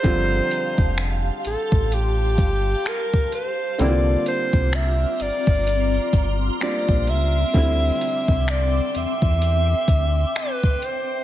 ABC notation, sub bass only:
X:1
M:4/4
L:1/16
Q:"Swing 16ths" 1/4=64
K:Gdor
V:1 name="Sub bass" clef=bass
G,,,2 z F,,,3 A,,, A,,,3 G,,,2 z4 | C,,2 z C,,3 G,,, G,,,3 G,,,2 z B,,, ^C,,2 | D,,2 z C,,3 E,, E,,3 D,,2 z4 |]